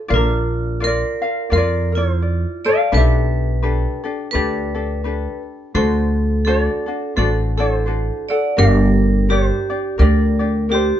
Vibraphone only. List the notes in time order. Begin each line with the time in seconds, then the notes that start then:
0.14 F4
0.84 A#4
1.53 A#4
1.95 F4
2.65 D5
2.94 B4
4.31 B4
5.75 A4
6.45 A4
7.17 A4
7.58 A4
8.29 D5
8.59 A#4
9.30 G4
9.99 A#4
10.72 G4